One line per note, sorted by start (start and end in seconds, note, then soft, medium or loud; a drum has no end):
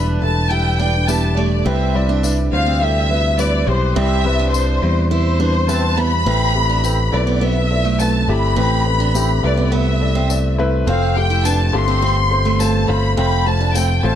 0.00 0.18 E1 medium
0.00 1.68 E3 medium
0.00 0.22 G3 loud
0.00 0.19 D4 medium
0.00 0.22 D4 loud
0.00 0.22 E4 loud
0.00 0.52 G4 medium
0.00 0.23 A4 loud
0.00 1.67 B4 loud
0.00 0.80 D5 medium
0.22 1.62 E1 medium
0.22 0.49 G3 medium
0.22 0.49 D4 medium
0.22 0.49 E4 medium
0.22 0.49 A4 medium
0.22 0.49 A5 medium
0.50 0.77 G3 medium
0.50 0.77 D4 medium
0.50 0.78 E4 medium
0.50 0.78 G4 medium
0.50 0.78 G5 loud
0.79 1.06 G3 medium
0.79 0.93 D4 medium
0.79 1.06 D4 medium
0.79 1.07 E4 medium
0.79 1.07 D5 medium
0.79 1.06 G5 medium
1.07 1.35 G3 medium
1.07 1.22 B3 medium
1.07 1.35 D4 medium
1.07 1.35 E4 medium
1.07 1.35 G4 medium
1.07 1.37 A5 medium
1.07 tambourine medium
1.36 1.64 G3 medium
1.36 1.51 A3 medium
1.36 1.64 D4 medium
1.36 1.64 E4 medium
1.36 1.64 G4 medium
1.36 1.65 D5 medium
1.65 2.48 C2 medium
1.65 2.48 C3 medium
1.65 1.93 G3 medium
1.65 1.93 C4 medium
1.65 1.93 E4 medium
1.65 1.93 B4 loud
1.65 2.23 E5 medium
1.95 2.21 G3 medium
1.95 2.22 C4 medium
1.95 2.22 E4 medium
1.95 2.22 D5 loud
2.09 2.22 D4 medium
2.23 2.50 G3 medium
2.23 2.50 C4 medium
2.23 2.37 D4 medium
2.23 2.51 E4 medium
2.23 2.51 B4 medium
2.23 tambourine medium
2.52 3.63 D2 medium
2.52 2.79 G3 medium
2.52 2.79 C4 medium
2.52 2.79 E4 medium
2.52 2.80 C5 medium
2.52 2.79 F5 medium
2.66 3.07 C4 medium
2.81 3.08 G3 medium
2.81 3.08 C4 medium
2.81 3.08 E4 medium
2.81 3.08 A4 medium
2.81 3.39 E5 loud
3.10 3.37 G3 medium
3.10 3.37 C4 medium
3.10 3.37 E4 medium
3.10 3.37 B4 medium
3.38 3.65 G3 medium
3.38 3.65 C4 medium
3.38 3.66 E4 medium
3.38 3.66 B4 loud
3.38 3.67 D5 medium
3.38 tambourine medium
3.67 3.94 B1 medium
3.67 3.94 G3 medium
3.67 3.94 C4 medium
3.67 3.94 E4 medium
3.67 3.95 G4 medium
3.67 3.96 C5 medium
3.96 4.78 C2 loud
3.96 4.79 C3 medium
3.96 4.23 G3 medium
3.96 4.23 C4 loud
3.96 4.23 C4 medium
3.96 4.23 E4 medium
3.96 4.23 D5 medium
3.96 4.50 E5 medium
4.25 4.52 G3 loud
4.25 4.52 C4 medium
4.25 4.52 E4 medium
4.25 4.52 B4 medium
4.39 4.80 D4 medium
4.54 4.80 G3 medium
4.54 4.81 C4 medium
4.54 4.81 E4 medium
4.54 4.81 B4 medium
4.54 5.10 C5 medium
4.54 tambourine medium
4.82 6.22 E2 medium
4.82 5.09 G3 medium
4.82 5.09 C4 medium
4.82 5.10 E4 medium
4.82 5.10 C5 medium
5.11 5.38 G3 medium
5.11 5.38 C4 medium
5.11 5.39 E4 medium
5.11 5.38 E4 medium
5.11 5.38 B4 medium
5.11 5.94 C5 medium
5.40 5.67 G3 medium
5.40 5.67 C4 medium
5.40 5.54 D4 medium
5.40 5.67 E4 medium
5.40 5.67 B4 medium
5.68 5.95 G3 medium
5.68 5.95 C4 medium
5.68 5.83 C4 medium
5.68 5.96 E4 medium
5.68 5.96 B4 loud
5.68 5.96 A5 medium
5.68 tambourine medium
5.97 6.24 G3 medium
5.97 6.11 B3 medium
5.97 6.24 C4 medium
5.97 6.24 E4 medium
5.97 6.25 B4 medium
5.97 7.13 B5 loud
6.26 7.09 A1 medium
6.26 7.09 A2 medium
6.26 6.53 A3 medium
6.26 6.53 C4 medium
6.26 6.54 C4 medium
6.26 6.53 E4 medium
6.26 6.53 B4 loud
6.54 6.82 A3 medium
6.54 6.82 C4 medium
6.54 6.82 E4 medium
6.54 6.82 G4 medium
6.70 6.83 D4 medium
6.84 7.11 A3 medium
6.84 6.98 C4 medium
6.84 7.11 C4 medium
6.84 7.11 E4 medium
6.84 7.11 B4 medium
6.84 tambourine medium
7.13 8.24 B1 medium
7.13 7.39 A3 medium
7.13 7.40 C4 medium
7.13 7.40 E4 medium
7.13 7.40 B4 medium
7.13 7.42 D5 medium
7.27 7.40 B3 medium
7.41 7.68 A3 medium
7.41 7.55 B3 medium
7.41 7.68 C4 medium
7.41 7.69 E4 medium
7.41 7.69 B4 medium
7.41 8.00 E5 loud
7.71 7.97 A3 medium
7.71 7.97 C4 medium
7.71 7.98 E4 medium
7.71 7.98 D5 medium
7.85 8.12 A3 medium
7.99 8.26 A3 medium
7.99 8.26 C4 medium
7.99 8.26 E4 medium
7.99 8.27 B4 medium
7.99 8.29 A5 medium
7.99 tambourine medium
8.28 8.55 G1 medium
8.28 8.55 A3 medium
8.28 8.55 C4 medium
8.28 8.55 E4 medium
8.28 8.55 G4 loud
8.28 9.44 B5 loud
8.56 9.39 A1 loud
8.56 9.39 A2 medium
8.56 8.84 A3 medium
8.56 8.84 C4 medium
8.56 8.84 E4 medium
8.56 8.84 B4 medium
8.86 9.12 A3 medium
8.86 9.12 C4 medium
8.86 9.13 E4 medium
8.86 9.13 B4 medium
9.00 9.14 D4 medium
9.14 9.41 A3 medium
9.14 9.28 C4 medium
9.14 9.41 C4 medium
9.14 9.42 E4 medium
9.14 9.42 G4 medium
9.14 tambourine medium
9.43 10.83 C2 medium
9.43 9.70 A3 medium
9.43 9.70 C4 medium
9.43 9.70 E4 medium
9.43 9.70 B4 loud
9.43 9.73 D5 medium
9.57 9.71 B3 medium
9.72 9.99 A3 medium
9.72 9.86 B3 medium
9.72 9.99 C4 medium
9.72 9.99 E4 medium
9.72 9.99 B4 medium
9.72 10.59 E5 medium
10.00 10.27 A3 medium
10.00 10.28 C4 medium
10.00 10.28 E4 medium
10.00 10.28 D5 medium
10.15 10.29 C4 medium
10.29 10.56 A3 medium
10.29 10.56 C4 medium
10.29 10.57 E4 medium
10.29 10.57 D5 medium
10.29 tambourine medium
10.58 10.85 A3 loud
10.58 10.85 C4 loud
10.58 10.86 E4 loud
10.58 10.86 B4 loud
10.87 11.70 F1 loud
10.87 11.14 A3 medium
10.87 11.14 C4 medium
10.87 11.15 C4 loud
10.87 11.14 F4 medium
10.87 11.14 C5 loud
10.87 11.14 F5 medium
11.16 11.43 A3 medium
11.16 11.43 C4 medium
11.16 11.43 F4 medium
11.16 11.43 G4 medium
11.16 11.45 G5 loud
11.30 11.44 E4 medium
11.45 11.71 A3 medium
11.45 11.72 C4 medium
11.45 11.59 D4 medium
11.45 11.72 F4 medium
11.45 11.72 B4 medium
11.45 11.74 A5 medium
11.45 tambourine medium
11.73 12.85 G1 medium
11.73 12.00 A3 loud
11.73 12.00 C4 medium
11.73 12.01 F4 medium
11.73 12.01 G4 loud
11.73 12.61 C6 loud
11.88 12.01 C4 medium
12.02 12.29 A3 medium
12.02 12.16 C4 medium
12.02 12.29 C4 medium
12.02 12.29 F4 medium
12.02 12.29 C5 medium
12.31 12.58 A3 medium
12.31 12.58 C4 medium
12.31 12.58 F4 medium
12.31 12.58 C5 medium
12.45 12.73 A3 medium
12.59 12.86 A3 medium
12.59 12.87 C4 medium
12.59 12.87 F4 medium
12.59 12.87 C5 medium
12.59 12.89 A5 medium
12.59 tambourine medium
12.88 13.15 G1 medium
12.88 13.15 A3 medium
12.88 13.15 C4 medium
12.88 13.16 F4 medium
12.88 13.16 C5 loud
12.88 13.17 B5 loud
13.17 14.00 F1 loud
13.17 13.44 A3 medium
13.17 13.44 C4 medium
13.17 13.45 C4 medium
13.17 13.44 F4 medium
13.17 13.45 C5 loud
13.17 13.45 B5 loud
13.45 13.73 A3 medium
13.45 13.73 C4 medium
13.45 13.73 F4 medium
13.45 13.73 C5 medium
13.45 13.75 A5 loud
13.61 13.74 D4 medium
13.74 14.02 A3 medium
13.74 13.89 C4 medium
13.74 14.02 C4 medium
13.74 14.02 F4 medium
13.74 14.02 C5 medium
13.74 14.04 G5 medium
13.74 tambourine medium
14.03 14.15 A1 medium
14.03 14.15 A3 medium
14.03 14.15 C4 medium
14.03 14.15 F4 medium
14.03 14.15 C5 medium
14.03 14.15 A5 medium